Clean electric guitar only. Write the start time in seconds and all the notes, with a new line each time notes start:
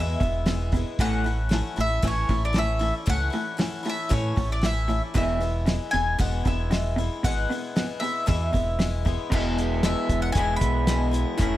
Already playing: E2 B2
0.20 E2 B2
0.46 E2 B2
0.73 E2 B2
1.00 A2 E3 A3
1.26 A2 E3
1.52 A2 E3
1.78 A2 E3
2.04 A2 E3
2.30 A2 E3
2.56 A2 E3
2.81 A2 E3
3.08 A2 E3
3.34 A2 E3
3.59 A2 E3
3.86 A2 E3
4.11 A2 E3
4.37 A2 E3
4.63 A2 E3
4.88 A2 E3
5.14 E2 B2 E3
5.41 E2 B2
5.66 E2 B2
5.93 E2 B2
6.19 E2 B2
6.46 E2 B2
6.71 E2 B2
6.96 E2 B2
7.23 E2 B2
7.50 E2 B2
7.76 E2 B2
8.01 E2 B2
8.27 E2 B2
8.53 E2 B2
8.79 E2 B2
9.06 E2 B2
9.30 E2 B2 E3 G#3 B3
9.34 E4
10.34 E2 B2 E3 G#3 B3 E4
11.37 E3 A3 C#4 E4